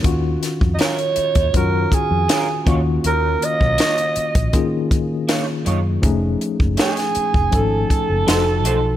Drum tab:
HH |x-x-xxxxx-x-x-x-|x-x-xxxxx-x-x-x-|x-x-xxx-x-x-x-x-|
SD |--o-o-------o---|----o-------o---|----oo------o---|
BD |o--o---oo-o---o-|---o---oo-o-----|o--o---oo-o-----|